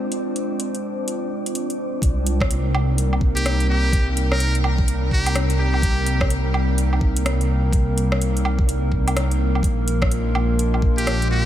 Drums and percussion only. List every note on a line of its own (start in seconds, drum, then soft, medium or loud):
0.12 closed hi-hat medium
0.36 closed hi-hat soft
0.60 closed hi-hat medium
0.75 closed hi-hat soft
1.08 closed hi-hat medium
1.46 closed hi-hat medium
1.55 closed hi-hat medium
1.70 closed hi-hat soft
2.02 kick loud
2.02 closed hi-hat medium
2.27 closed hi-hat medium
2.41 kick loud
2.41 cross-stick loud
2.51 closed hi-hat medium
2.75 low woodblock medium
2.98 closed hi-hat medium
3.13 low woodblock soft
3.21 kick loud
3.37 closed hi-hat medium
3.46 cross-stick loud
3.46 closed hi-hat medium
3.60 closed hi-hat soft
3.93 kick loud
3.93 closed hi-hat medium
4.17 closed hi-hat medium
4.32 cross-stick loud
4.40 closed hi-hat medium
4.55 closed hi-hat soft
4.64 low woodblock medium
4.78 kick loud
4.88 closed hi-hat medium
5.11 kick medium
5.26 closed hi-hat medium
5.26 low woodblock medium
5.35 cross-stick loud
5.35 closed hi-hat medium
5.50 closed hi-hat soft
5.74 low woodblock soft
5.82 kick loud
5.82 closed hi-hat medium
6.06 closed hi-hat medium
6.21 kick loud
6.21 cross-stick loud
6.30 closed hi-hat medium
6.54 low woodblock medium
6.78 closed hi-hat medium
6.93 low woodblock soft
7.01 kick loud
7.16 closed hi-hat medium
7.26 cross-stick loud
7.26 closed hi-hat medium
7.41 closed hi-hat soft
7.73 kick loud
7.73 closed hi-hat medium
7.98 closed hi-hat medium
8.12 cross-stick loud
8.21 closed hi-hat medium
8.37 closed hi-hat soft
8.45 low woodblock medium
8.59 kick loud
8.69 closed hi-hat medium
8.92 kick medium
9.08 closed hi-hat medium
9.08 low woodblock medium
9.17 cross-stick loud
9.17 closed hi-hat medium
9.31 closed hi-hat soft
9.55 low woodblock soft
9.63 kick loud
9.63 closed hi-hat medium
9.88 closed hi-hat medium
10.02 kick loud
10.02 cross-stick loud
10.11 closed hi-hat medium
10.35 low woodblock medium
10.59 closed hi-hat medium
10.74 low woodblock soft
10.82 kick loud
10.98 closed hi-hat medium
11.07 cross-stick loud
11.07 closed hi-hat medium
11.22 closed hi-hat soft